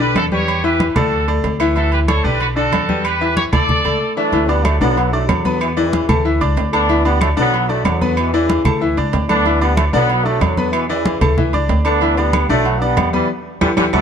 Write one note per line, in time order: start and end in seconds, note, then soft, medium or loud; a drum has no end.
0.00 0.12 B1 medium
0.00 0.26 D3 medium
0.00 0.26 D4 medium
0.00 0.15 G4 medium
0.00 0.15 B4 loud
0.00 0.26 D5 medium
0.00 high conga soft
0.15 0.90 E2 medium
0.15 0.24 F#4 medium
0.15 0.24 A4 loud
0.15 high conga medium
0.15 low timbale medium
0.15 low agogo loud
0.15 claves medium
0.32 0.58 G3 medium
0.32 0.58 G4 medium
0.32 0.62 G4 medium
0.32 0.58 B4 medium
0.32 0.62 C#5 loud
0.32 high conga medium
0.48 high conga soft
0.48 low agogo loud
0.48 claves medium
0.64 0.90 E3 medium
0.64 0.90 E4 medium
0.64 0.89 G4 medium
0.64 0.88 B4 loud
0.64 0.90 E5 medium
0.64 high conga soft
0.80 high conga loud
0.80 low timbale medium
0.80 low agogo medium
0.89 0.96 B4 medium
0.96 1.41 D2 loud
0.96 1.22 A3 medium
0.96 1.28 F#4 medium
0.96 1.22 A4 medium
0.96 1.28 A4 medium
0.96 1.23 D5 medium
0.96 low conga medium
0.96 low agogo loud
0.96 claves medium
1.12 high conga soft
1.28 1.54 A3 medium
1.28 1.54 A4 medium
1.28 1.54 D5 medium
1.28 high conga soft
1.28 low agogo medium
1.44 2.18 D2 loud
1.44 high conga soft
1.44 low timbale medium
1.44 low agogo medium
1.60 1.73 E3 medium
1.60 1.73 E4 medium
1.60 1.74 E5 medium
1.60 low agogo loud
1.60 claves medium
1.76 2.02 E3 medium
1.76 2.03 E4 medium
1.76 1.91 F#4 medium
1.76 1.91 A4 medium
1.76 2.03 E5 medium
1.76 high conga soft
1.76 low agogo medium
1.92 2.00 G4 medium
1.92 2.00 B4 medium
1.92 high conga soft
1.92 low agogo medium
2.08 2.21 A3 medium
2.08 2.21 A4 medium
2.08 2.23 A4 medium
2.08 2.23 C#5 medium
2.08 2.22 D5 medium
2.08 high conga loud
2.08 low timbale medium
2.08 low agogo loud
2.08 claves medium
2.24 2.69 B1 medium
2.24 2.50 D3 medium
2.24 2.51 D4 medium
2.24 2.41 G4 medium
2.24 2.39 B4 medium
2.24 2.51 D5 medium
2.24 high conga soft
2.40 2.48 F#4 medium
2.40 2.48 B4 medium
2.40 high conga soft
2.40 low agogo medium
2.56 2.82 D3 medium
2.56 2.83 D4 medium
2.56 3.01 F#4 medium
2.56 3.01 A4 medium
2.56 2.83 D5 medium
2.56 high conga soft
2.72 3.47 E2 medium
2.72 high conga medium
2.72 low timbale medium
2.72 low agogo loud
2.72 claves medium
2.89 3.15 G3 medium
2.89 3.15 G4 medium
2.89 3.15 B4 medium
2.89 high conga medium
3.04 3.36 G4 medium
3.04 3.36 B4 loud
3.04 high conga soft
3.04 low agogo loud
3.04 claves medium
3.21 3.47 E3 medium
3.21 3.47 E4 medium
3.21 3.47 E5 medium
3.21 high conga soft
3.37 3.44 G4 medium
3.37 3.44 C#5 loud
3.37 high conga loud
3.37 low timbale medium
3.37 low agogo medium
3.52 3.82 D2 medium
3.52 3.79 A3 medium
3.52 3.79 A4 medium
3.52 4.13 A4 medium
3.52 4.13 D5 loud
3.52 3.79 D5 medium
3.52 low conga medium
3.52 low agogo loud
3.52 claves medium
3.69 high conga soft
3.69 low conga medium
3.84 3.99 C#2 medium
3.84 4.11 A3 medium
3.84 4.11 A4 medium
3.84 4.11 D5 medium
3.84 high conga soft
3.84 low agogo medium
4.16 4.30 E3 medium
4.16 4.47 A3 medium
4.16 4.46 D4 loud
4.16 4.30 E4 medium
4.16 4.30 E5 medium
4.32 4.77 D2 loud
4.32 4.46 E3 medium
4.32 4.46 E4 medium
4.32 4.46 E5 medium
4.32 high conga soft
4.32 low agogo medium
4.49 4.65 G3 medium
4.49 4.65 B3 loud
4.49 4.75 D4 medium
4.49 4.75 D5 medium
4.49 4.75 D6 medium
4.49 high conga soft
4.49 low agogo medium
4.65 4.80 F#3 medium
4.65 4.81 A3 loud
4.65 high conga loud
4.65 low timbale medium
4.65 low agogo loud
4.65 claves medium
4.80 5.25 B1 loud
4.80 4.94 D3 loud
4.80 5.11 F#3 medium
4.80 5.10 B3 loud
4.80 4.94 D4 medium
4.80 4.94 D5 loud
4.80 high conga soft
4.97 5.10 F#3 medium
4.97 5.10 F#4 medium
4.97 5.10 F#5 medium
4.97 high conga soft
4.97 low agogo medium
5.13 5.27 F#3 medium
5.13 5.28 A3 loud
5.13 5.39 D4 medium
5.13 5.39 D5 medium
5.13 5.40 D6 medium
5.13 high conga soft
5.28 6.03 E2 loud
5.28 5.61 D3 medium
5.28 5.61 F#3 medium
5.28 high conga medium
5.28 low timbale medium
5.28 low agogo loud
5.28 claves medium
5.45 5.71 B3 medium
5.45 5.71 B4 medium
5.45 5.71 B5 medium
5.45 high conga medium
5.61 5.69 B2 medium
5.61 5.68 E3 medium
5.61 high conga soft
5.61 low agogo loud
5.61 claves medium
5.77 6.22 C#3 medium
5.77 6.03 E3 loud
5.77 6.22 E3 medium
5.77 6.03 E4 medium
5.77 6.03 D5 medium
5.77 high conga soft
5.93 high conga loud
5.93 low timbale medium
5.93 low agogo medium
6.09 6.39 D2 loud
6.09 6.22 A3 medium
6.09 6.22 A4 medium
6.09 6.22 A5 medium
6.09 low conga medium
6.09 low agogo loud
6.09 claves medium
6.25 6.38 E3 medium
6.25 6.38 E4 medium
6.25 6.38 E5 medium
6.25 high conga soft
6.41 6.56 C#2 medium
6.41 6.67 D4 medium
6.41 6.67 D5 medium
6.41 6.68 D6 medium
6.41 high conga soft
6.41 low agogo medium
6.57 7.31 D2 loud
6.57 high conga soft
6.57 low timbale medium
6.57 low agogo medium
6.73 6.86 A3 medium
6.73 7.03 B3 medium
6.73 7.03 D4 loud
6.73 6.86 A4 medium
6.73 6.86 A5 medium
6.73 low agogo loud
6.73 claves medium
6.89 7.02 E3 medium
6.89 7.02 E4 medium
6.89 7.02 E5 medium
6.89 high conga soft
6.89 low agogo medium
7.05 7.20 G3 medium
7.05 7.20 B3 loud
7.05 7.31 D4 medium
7.05 7.31 D5 medium
7.05 7.32 D6 medium
7.05 high conga soft
7.05 low agogo medium
7.21 7.29 F#3 medium
7.21 7.29 A3 loud
7.21 high conga loud
7.21 low timbale medium
7.21 low agogo loud
7.21 claves medium
7.37 7.82 B1 medium
7.37 7.50 D3 loud
7.37 7.68 F#3 loud
7.37 7.68 B3 loud
7.37 7.50 D4 loud
7.37 7.50 D5 loud
7.37 high conga soft
7.53 7.66 F#3 medium
7.53 7.66 F#4 medium
7.53 7.67 F#5 medium
7.53 high conga soft
7.53 low agogo medium
7.69 7.85 F#3 medium
7.69 7.85 A3 loud
7.69 7.95 D4 medium
7.69 7.95 D5 medium
7.69 7.96 D6 medium
7.69 high conga soft
7.85 8.59 E2 loud
7.85 8.15 D3 medium
7.85 8.16 F#3 medium
7.85 high conga medium
7.85 low timbale medium
7.85 low agogo loud
7.85 claves medium
8.01 8.28 B3 medium
8.01 8.28 B4 medium
8.01 8.28 B5 medium
8.01 high conga medium
8.17 8.34 B2 medium
8.17 8.32 E3 loud
8.17 high conga soft
8.17 low agogo loud
8.17 claves medium
8.34 8.78 C#3 medium
8.34 8.60 E3 medium
8.34 8.78 E3 medium
8.34 8.60 E4 loud
8.34 8.60 D5 medium
8.34 high conga soft
8.49 high conga loud
8.49 low timbale medium
8.49 low agogo medium
8.65 8.95 D2 medium
8.65 8.78 A3 medium
8.65 8.79 A4 medium
8.65 8.79 A5 medium
8.65 low conga medium
8.65 low agogo loud
8.65 claves medium
8.81 8.94 E3 medium
8.81 8.94 E4 medium
8.81 8.95 E5 medium
8.81 high conga soft
8.97 9.12 C#2 medium
8.97 9.23 D4 medium
8.97 9.24 D5 medium
8.97 9.24 D6 medium
8.97 high conga soft
8.97 low agogo medium
9.13 9.88 D2 loud
9.13 high conga soft
9.13 low timbale medium
9.13 low agogo medium
9.29 9.42 A3 medium
9.29 9.60 B3 medium
9.29 9.59 D4 loud
9.29 9.43 A4 medium
9.29 9.43 A5 medium
9.29 high conga medium
9.29 low agogo loud
9.29 claves medium
9.45 9.58 E3 medium
9.45 9.59 E4 medium
9.45 9.59 E5 medium
9.45 high conga soft
9.45 low agogo medium
9.61 9.77 G3 medium
9.61 9.76 B3 loud
9.61 9.88 D4 medium
9.61 9.88 D5 medium
9.61 9.88 D6 medium
9.61 high conga soft
9.61 low agogo medium
9.77 9.85 F#3 medium
9.77 9.84 A3 medium
9.77 high conga loud
9.77 low timbale medium
9.77 low agogo loud
9.77 claves medium
9.93 10.38 B1 medium
9.93 10.06 D3 loud
9.93 10.24 F#3 medium
9.93 10.23 B3 loud
9.93 10.07 D4 loud
9.93 10.07 D5 loud
9.93 high conga soft
10.09 10.22 F#3 medium
10.09 10.22 F#4 medium
10.09 10.23 F#5 medium
10.09 high conga soft
10.09 low agogo medium
10.25 10.39 F#3 medium
10.25 10.41 A3 loud
10.25 10.51 D4 medium
10.25 10.52 D5 medium
10.25 10.52 D6 medium
10.25 high conga soft
10.41 11.16 E2 loud
10.41 10.74 D3 medium
10.41 10.73 F#3 loud
10.41 high conga medium
10.41 low timbale medium
10.41 low agogo loud
10.41 claves medium
10.57 10.84 B3 medium
10.57 10.84 B4 medium
10.57 10.84 B5 medium
10.57 high conga medium
10.72 10.89 B2 medium
10.72 10.87 E3 medium
10.72 high conga soft
10.72 low agogo loud
10.72 claves medium
10.88 11.34 C#3 medium
10.88 11.33 E3 medium
10.88 11.16 E3 loud
10.88 11.16 E4 loud
10.88 11.16 D5 medium
10.88 high conga soft
11.06 high conga loud
11.06 low timbale medium
11.06 low agogo medium
11.21 11.51 D2 medium
11.21 11.34 A3 medium
11.21 11.34 A4 medium
11.21 11.35 A5 medium
11.21 low conga loud
11.21 low agogo loud
11.21 claves medium
11.38 11.51 E3 medium
11.38 11.51 E4 medium
11.38 11.51 E5 medium
11.38 high conga soft
11.38 low conga medium
11.53 11.68 C#2 medium
11.53 11.80 D4 medium
11.53 11.80 D5 medium
11.53 11.80 D6 medium
11.53 high conga soft
11.53 low agogo medium
11.69 12.44 D2 loud
11.69 high conga soft
11.69 low timbale medium
11.69 low agogo medium
11.85 11.98 A3 medium
11.85 12.16 B3 loud
11.85 12.15 D4 loud
11.85 11.99 A4 medium
11.85 11.99 A5 medium
11.85 low agogo loud
11.85 claves medium
12.01 12.15 E3 medium
12.01 12.15 E4 medium
12.01 12.15 E5 medium
12.01 high conga soft
12.01 low agogo medium
12.17 12.50 G3 medium
12.17 12.49 B3 loud
12.17 12.44 D4 medium
12.17 12.44 D5 medium
12.17 12.44 D6 medium
12.17 high conga soft
12.17 low agogo medium
12.33 high conga loud
12.33 low timbale medium
12.33 low agogo loud
12.33 claves medium
12.49 12.94 B1 medium
12.49 12.63 D3 loud
12.49 12.80 F#3 medium
12.49 12.79 A3 loud
12.49 12.63 D4 loud
12.49 12.63 D5 loud
12.49 high conga soft
12.65 12.78 F#3 medium
12.65 12.79 F#4 medium
12.65 12.79 F#5 medium
12.65 high conga soft
12.65 low agogo medium
12.81 13.12 G3 medium
12.81 13.13 B3 loud
12.81 13.08 D4 medium
12.81 13.08 D5 medium
12.81 13.08 D6 medium
12.81 high conga soft
12.97 13.27 E2 loud
12.97 high conga medium
12.97 low timbale loud
12.97 low agogo loud
12.97 claves medium
13.13 13.29 E3 medium
13.13 13.28 G3 loud
13.13 13.26 B3 medium
13.13 13.27 B4 medium
13.13 13.27 B5 medium
13.13 high conga medium
13.61 13.73 E2 loud
13.61 13.69 D3 medium
13.61 13.69 E3 loud
13.61 13.69 G3 medium
13.61 13.71 E4 loud
13.61 13.72 G4 loud
13.61 13.72 B4 loud
13.61 high conga loud
13.61 high timbale loud
13.61 claves loud
13.77 13.89 E2 medium
13.77 13.85 D3 loud
13.77 13.85 E3 loud
13.77 13.85 G3 loud
13.77 13.88 E4 loud
13.77 13.88 G4 loud
13.77 13.88 B4 loud
13.77 high conga loud
13.77 high timbale loud
13.77 claves loud
13.93 14.01 D2 loud
13.93 14.01 E3 loud
13.93 14.01 F#3 loud
13.93 14.01 A3 loud
13.93 14.01 F#4 loud
13.93 14.01 A4 medium
13.93 14.01 D5 medium
13.93 high conga loud
13.93 high timbale loud
13.93 claves loud